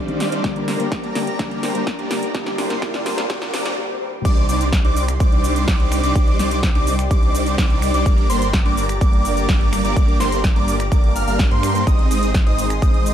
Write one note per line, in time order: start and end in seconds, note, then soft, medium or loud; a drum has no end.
0.00 0.30 C2 loud
0.00 0.40 D#3 medium
0.00 0.29 G3 medium
0.00 0.29 D4 medium
0.00 0.29 D#4 medium
0.00 0.29 C5 medium
0.00 0.40 C5 medium
0.00 0.29 D5 loud
0.00 3.73 D5 medium
0.00 0.42 F5 medium
0.00 riser medium
0.08 0.41 D#3 medium
0.08 0.41 C4 medium
0.08 0.41 D4 medium
0.08 0.42 G4 medium
0.08 closed hi-hat soft
0.20 snare medium
0.20 open hi-hat loud
0.32 0.42 C2 medium
0.32 0.42 G3 loud
0.32 0.42 D4 medium
0.32 0.42 D#4 medium
0.32 0.42 C5 medium
0.32 0.42 D5 loud
0.32 closed hi-hat medium
0.43 0.66 G1 medium
0.43 0.77 D3 medium
0.43 0.77 G3 medium
0.43 0.65 G3 medium
0.43 0.65 A#3 medium
0.43 0.77 A#3 medium
0.43 0.65 D4 medium
0.43 3.74 G4 medium
0.43 0.77 G4 loud
0.43 0.65 A#4 medium
0.43 3.74 A#4 medium
0.43 0.65 D5 loud
0.43 2.33 A#5 medium
0.43 kick loud
0.43 snare medium
0.43 closed hi-hat medium
0.56 closed hi-hat soft
0.68 1.01 G1 medium
0.68 0.87 G3 medium
0.68 0.87 A#3 medium
0.68 0.87 D4 medium
0.68 0.87 A#4 medium
0.68 0.87 C5 medium
0.68 snare medium
0.68 open hi-hat loud
0.79 0.87 D3 medium
0.79 0.87 G3 medium
0.79 0.87 A#3 medium
0.79 0.88 G4 medium
0.79 closed hi-hat soft
0.92 kick loud
0.92 snare medium
0.92 closed hi-hat soft
1.04 1.37 G1 loud
1.04 1.23 G3 loud
1.04 1.23 A#3 medium
1.04 1.23 D4 medium
1.04 1.23 A#4 medium
1.04 1.23 D5 loud
1.04 closed hi-hat soft
1.15 1.27 D3 medium
1.15 1.27 G3 medium
1.15 1.27 A#3 medium
1.15 1.28 G4 loud
1.15 snare medium
1.15 open hi-hat loud
1.27 closed hi-hat soft
1.39 1.61 G1 loud
1.39 1.72 D3 medium
1.39 1.60 G3 medium
1.39 1.72 G3 medium
1.39 1.60 A#3 medium
1.39 1.72 A#3 medium
1.39 1.60 D4 medium
1.39 1.72 G4 loud
1.39 1.60 A#4 medium
1.39 1.60 D5 loud
1.39 kick loud
1.39 snare medium
1.39 closed hi-hat medium
1.51 closed hi-hat soft
1.63 1.96 G1 loud
1.63 1.82 G3 medium
1.63 1.82 A#3 medium
1.63 1.82 D4 medium
1.63 1.82 A#4 medium
1.63 1.82 C5 medium
1.63 snare medium
1.63 open hi-hat loud
1.74 1.82 D3 medium
1.74 1.82 G3 medium
1.74 1.83 A#3 medium
1.74 1.83 G4 medium
1.74 closed hi-hat medium
1.87 kick loud
1.87 snare medium
1.87 closed hi-hat medium
1.99 2.32 G1 loud
1.99 2.18 G3 medium
1.99 2.18 A#3 medium
1.99 2.18 D4 medium
1.99 2.18 A#4 medium
1.99 2.18 D5 loud
1.99 closed hi-hat soft
2.10 2.22 D3 medium
2.10 2.22 G3 medium
2.10 2.23 A#3 medium
2.10 2.23 G4 loud
2.10 snare medium
2.10 open hi-hat loud
2.23 closed hi-hat medium
2.34 2.56 G1 loud
2.34 2.67 D3 loud
2.34 2.67 G3 medium
2.34 2.55 G3 loud
2.34 2.55 A#3 medium
2.34 2.67 A#3 medium
2.34 2.55 D4 medium
2.34 2.68 G4 loud
2.34 2.55 A#4 medium
2.34 2.55 D5 loud
2.34 3.76 C6 medium
2.34 kick loud
2.34 snare medium
2.34 closed hi-hat soft
2.46 snare medium
2.46 closed hi-hat soft
2.58 2.80 G1 medium
2.58 2.77 G3 medium
2.58 2.77 A#3 medium
2.58 2.77 D4 medium
2.58 2.77 A#4 medium
2.58 2.77 C5 loud
2.58 snare medium
2.58 open hi-hat loud
2.70 2.77 D3 medium
2.70 2.78 G3 medium
2.70 2.78 A#3 medium
2.70 2.78 G4 medium
2.70 snare medium
2.70 closed hi-hat soft
2.82 3.15 D3 loud
2.82 3.03 G3 loud
2.82 3.15 G3 medium
2.82 3.15 A#3 loud
2.82 3.03 A#3 loud
2.82 3.03 D4 medium
2.82 3.15 G4 loud
2.82 3.03 A#4 medium
2.82 3.03 D5 loud
2.82 kick loud
2.82 snare medium
2.82 closed hi-hat soft
2.94 snare medium
2.94 closed hi-hat soft
3.06 3.27 G1 loud
3.06 3.25 G3 medium
3.06 3.25 A#3 medium
3.06 3.25 D4 medium
3.06 3.25 A#4 medium
3.06 3.25 C5 medium
3.06 snare loud
3.06 open hi-hat loud
3.17 3.25 D3 medium
3.17 3.25 G3 medium
3.17 3.25 A#3 medium
3.17 3.26 G4 medium
3.17 snare medium
3.17 closed hi-hat soft
3.29 3.51 G1 loud
3.29 3.51 D3 loud
3.29 3.52 G3 medium
3.29 3.51 G3 loud
3.29 3.51 A#3 medium
3.29 3.52 A#3 medium
3.29 3.51 D4 medium
3.29 3.52 G4 loud
3.29 3.51 A#4 medium
3.29 3.51 D5 loud
3.29 kick loud
3.29 snare loud
3.29 closed hi-hat medium
3.29 swell medium
3.42 snare medium
3.42 closed hi-hat soft
3.53 3.75 G1 loud
3.53 3.75 D3 medium
3.53 3.75 G3 medium
3.53 3.75 G3 loud
3.53 3.75 A#3 medium
3.53 3.76 A#3 medium
3.53 3.75 D4 medium
3.53 3.76 G4 loud
3.53 3.75 A#4 medium
3.53 3.75 D5 loud
3.53 snare loud
3.53 open hi-hat loud
3.66 snare loud
3.66 closed hi-hat medium
3.77 3.99 D3 loud
3.77 3.99 G3 medium
3.77 3.99 A#3 medium
3.77 4.00 G4 loud
4.01 4.23 D3 loud
4.01 4.23 G3 medium
4.01 4.23 A#3 medium
4.01 4.23 G4 loud
4.25 4.46 C2 loud
4.25 4.46 G3 loud
4.25 4.46 D4 medium
4.25 4.46 D#4 medium
4.25 11.83 G4 medium
4.25 4.46 C5 medium
4.25 4.46 D5 loud
4.25 11.83 D5 medium
4.25 8.02 C6 medium
4.25 4.46 D6 loud
4.25 kick loud
4.25 closed hi-hat medium
4.25 crash loud
4.25 cabasa soft
4.37 closed hi-hat soft
4.49 4.82 C2 medium
4.49 4.68 G3 medium
4.49 4.68 D4 medium
4.49 4.68 D#4 medium
4.49 4.68 C5 medium
4.49 4.68 D5 medium
4.49 4.68 D6 loud
4.49 open hi-hat loud
4.49 cabasa medium
4.61 closed hi-hat medium
4.61 cabasa soft
4.73 kick loud
4.73 snare loud
4.73 closed hi-hat medium
4.73 cabasa soft
4.84 5.18 C2 medium
4.84 5.03 G3 loud
4.84 5.03 D4 medium
4.84 5.03 D#4 medium
4.84 5.03 C5 medium
4.84 5.03 D5 loud
4.84 5.03 D6 loud
4.84 closed hi-hat soft
4.97 open hi-hat loud
4.97 cabasa medium
5.08 finger snap medium
5.08 closed hi-hat medium
5.08 cabasa soft
5.20 5.66 C2 loud
5.20 5.65 G3 medium
5.20 5.65 D4 medium
5.20 5.65 D#4 medium
5.20 5.65 C5 medium
5.20 5.65 D5 loud
5.20 5.65 D6 loud
5.20 kick loud
5.20 closed hi-hat medium
5.20 cabasa soft
5.32 closed hi-hat soft
5.44 open hi-hat loud
5.44 cabasa medium
5.56 closed hi-hat medium
5.56 cabasa soft
5.68 6.01 C2 loud
5.68 6.01 G3 medium
5.68 6.01 D4 medium
5.68 6.01 D#4 medium
5.68 6.01 C5 medium
5.68 6.01 D6 medium
5.68 kick loud
5.68 snare loud
5.68 closed hi-hat medium
5.68 cabasa soft
5.80 closed hi-hat soft
5.92 finger snap medium
5.92 open hi-hat loud
5.92 cabasa medium
6.04 6.13 C2 loud
6.04 6.14 G3 loud
6.04 6.14 D4 medium
6.04 6.14 D#4 medium
6.04 6.14 C5 medium
6.04 6.14 D5 loud
6.04 6.14 D6 loud
6.04 closed hi-hat medium
6.04 cabasa soft
6.16 6.37 C2 loud
6.16 6.36 D6 loud
6.16 kick loud
6.16 closed hi-hat medium
6.16 cabasa soft
6.27 closed hi-hat soft
6.39 6.73 C2 loud
6.39 6.58 G3 medium
6.39 6.58 D4 medium
6.39 6.58 D#4 medium
6.39 6.58 C5 medium
6.39 6.58 D5 loud
6.39 6.58 D6 loud
6.39 snare medium
6.39 open hi-hat loud
6.39 cabasa medium
6.51 closed hi-hat medium
6.51 cabasa soft
6.63 kick loud
6.63 snare loud
6.63 closed hi-hat medium
6.63 cabasa soft
6.75 7.08 C2 medium
6.75 6.94 G3 loud
6.75 6.94 D4 loud
6.75 6.94 D#4 loud
6.75 6.94 C5 medium
6.75 6.94 D5 loud
6.75 6.94 D6 loud
6.75 closed hi-hat soft
6.87 open hi-hat loud
6.87 cabasa medium
6.99 finger snap medium
6.99 closed hi-hat medium
6.99 cabasa soft
7.11 7.56 C2 loud
7.11 7.56 G3 medium
7.11 7.56 D4 medium
7.11 7.56 D#4 medium
7.11 7.56 C5 medium
7.11 7.56 D5 loud
7.11 7.56 D6 loud
7.11 kick loud
7.11 closed hi-hat medium
7.11 cabasa soft
7.23 closed hi-hat soft
7.35 open hi-hat loud
7.35 cabasa medium
7.46 closed hi-hat medium
7.46 cabasa soft
7.58 7.92 C2 loud
7.58 7.91 D4 medium
7.58 7.91 D#4 medium
7.58 7.91 C5 medium
7.58 7.91 D6 medium
7.58 kick loud
7.58 snare loud
7.58 closed hi-hat medium
7.58 cabasa soft
7.70 closed hi-hat soft
7.82 finger snap medium
7.82 open hi-hat loud
7.82 cabasa medium
7.94 8.04 C2 loud
7.94 8.04 G3 loud
7.94 8.04 D4 medium
7.94 8.04 D#4 loud
7.94 8.04 C5 medium
7.94 8.04 D5 loud
7.94 8.04 D6 loud
7.94 closed hi-hat medium
7.94 cabasa soft
8.06 8.27 G1 loud
8.06 11.83 A#5 medium
8.06 8.27 D6 loud
8.06 11.83 D6 medium
8.06 kick loud
8.06 closed hi-hat soft
8.06 cabasa soft
8.18 closed hi-hat soft
8.30 8.63 G1 loud
8.30 8.49 G3 medium
8.30 8.49 A#3 medium
8.30 8.49 D4 medium
8.30 8.49 A#4 medium
8.30 8.49 C5 loud
8.30 8.49 C6 loud
8.30 open hi-hat loud
8.30 cabasa medium
8.42 closed hi-hat medium
8.42 cabasa soft
8.53 kick loud
8.53 snare loud
8.53 closed hi-hat medium
8.53 cabasa soft
8.65 8.99 G1 loud
8.65 8.84 G3 loud
8.65 8.84 A#3 loud
8.65 8.84 D4 medium
8.65 8.84 A#4 medium
8.65 8.84 D5 loud
8.65 8.84 D6 loud
8.65 closed hi-hat soft
8.77 open hi-hat loud
8.77 cabasa medium
8.89 finger snap medium
8.89 closed hi-hat medium
8.89 cabasa soft
9.01 9.46 G1 loud
9.01 9.46 G3 medium
9.01 9.46 A#3 medium
9.01 9.46 D4 medium
9.01 9.46 A#4 medium
9.01 9.46 D5 loud
9.01 9.46 D6 loud
9.01 kick loud
9.01 closed hi-hat soft
9.01 cabasa soft
9.13 closed hi-hat soft
9.25 open hi-hat loud
9.25 cabasa medium
9.37 closed hi-hat medium
9.37 cabasa soft
9.49 9.82 G1 loud
9.49 9.82 A#3 medium
9.49 9.82 D4 medium
9.49 9.82 A#4 medium
9.49 9.82 D5 loud
9.49 9.82 D6 loud
9.49 kick loud
9.49 snare loud
9.49 closed hi-hat medium
9.49 cabasa soft
9.61 closed hi-hat soft
9.73 finger snap medium
9.73 open hi-hat loud
9.73 cabasa medium
9.85 9.94 G1 loud
9.85 9.95 G3 loud
9.85 9.95 A#3 medium
9.85 9.95 D4 medium
9.85 9.95 A#4 medium
9.85 9.95 D5 loud
9.85 9.95 D6 loud
9.85 closed hi-hat soft
9.85 cabasa soft
9.96 10.18 G1 loud
9.96 10.17 G3 loud
9.96 10.17 A#3 medium
9.96 10.17 D4 medium
9.96 10.17 A#4 loud
9.96 10.17 D5 loud
9.96 10.17 D6 loud
9.96 kick loud
9.96 closed hi-hat medium
9.96 cabasa soft
10.08 closed hi-hat soft
10.20 10.54 G1 loud
10.20 10.39 G3 medium
10.20 10.39 A#3 medium
10.20 10.39 D4 medium
10.20 10.39 A#4 medium
10.20 10.39 C5 medium
10.20 10.39 C6 loud
10.20 snare medium
10.20 open hi-hat loud
10.20 cabasa medium
10.32 closed hi-hat medium
10.32 cabasa soft
10.44 kick loud
10.44 snare loud
10.44 closed hi-hat soft
10.44 cabasa soft
10.56 10.89 G1 medium
10.56 10.75 G3 loud
10.56 10.75 A#3 medium
10.56 10.75 D4 loud
10.56 10.75 A#4 medium
10.56 10.75 D5 loud
10.56 10.75 D6 loud
10.56 closed hi-hat soft
10.68 open hi-hat loud
10.68 cabasa medium
10.80 finger snap medium
10.80 closed hi-hat soft
10.80 cabasa soft
10.92 11.13 G1 loud
10.92 11.13 G3 medium
10.92 11.13 A#3 medium
10.92 11.13 D4 medium
10.92 11.13 A#4 medium
10.92 11.13 D5 loud
10.92 11.13 D6 loud
10.92 kick loud
10.92 closed hi-hat medium
10.92 cabasa soft
11.04 closed hi-hat soft
11.16 11.25 G1 loud
11.16 11.25 G3 medium
11.16 11.25 A#3 medium
11.16 11.25 D4 medium
11.16 11.25 A#4 medium
11.16 11.25 F5 medium
11.16 11.25 F6 medium
11.16 open hi-hat loud
11.16 cabasa medium
11.27 11.49 G1 loud
11.27 11.48 G3 loud
11.27 11.48 A#3 medium
11.27 11.48 D4 medium
11.27 11.48 A#4 medium
11.27 11.48 F5 loud
11.27 11.48 F6 loud
11.27 open hi-hat medium
11.27 cabasa soft
11.39 kick loud
11.39 snare loud
11.39 closed hi-hat medium
11.39 cabasa soft
11.51 11.85 G2 medium
11.51 11.84 G3 medium
11.51 11.84 A#3 medium
11.51 11.84 D4 medium
11.51 11.84 A#4 medium
11.51 11.84 C5 loud
11.51 11.84 C6 loud
11.51 closed hi-hat soft
11.63 finger snap medium
11.63 open hi-hat loud
11.63 cabasa medium
11.75 closed hi-hat soft
11.75 cabasa soft
11.87 12.08 G#1 loud
11.87 12.08 G#3 loud
11.87 12.08 C4 medium
11.87 12.08 D#4 medium
11.87 13.14 G#4 medium
11.87 13.14 D#5 medium
11.87 12.08 D#5 loud
11.87 13.14 C6 medium
11.87 13.14 D#6 medium
11.87 12.08 D#6 loud
11.87 kick loud
11.87 closed hi-hat medium
11.87 cabasa soft
11.99 closed hi-hat soft
12.11 12.44 G#1 loud
12.11 12.30 G#3 medium
12.11 12.30 C4 medium
12.11 12.30 D#4 medium
12.11 12.30 C5 medium
12.11 12.30 D#5 loud
12.11 12.30 D#6 loud
12.11 open hi-hat loud
12.11 cabasa medium
12.23 closed hi-hat medium
12.23 cabasa soft
12.34 kick loud
12.34 snare loud
12.34 closed hi-hat soft
12.34 cabasa soft
12.46 12.80 G#1 loud
12.46 12.65 G#3 loud
12.46 12.65 C4 loud
12.46 12.65 D#4 medium
12.46 12.65 C5 medium
12.46 12.65 D#5 loud
12.46 12.65 D#6 loud
12.46 closed hi-hat soft
12.58 open hi-hat loud
12.58 cabasa medium
12.70 finger snap medium
12.70 closed hi-hat soft
12.70 cabasa soft
12.82 13.14 G#1 loud
12.82 13.14 G#3 medium
12.82 13.14 C4 medium
12.82 13.14 D#4 medium
12.82 13.14 C5 medium
12.82 13.14 D#5 loud
12.82 13.14 D#6 loud
12.82 kick loud
12.82 closed hi-hat soft
12.82 cabasa soft
12.94 closed hi-hat soft
13.06 open hi-hat loud
13.06 cabasa medium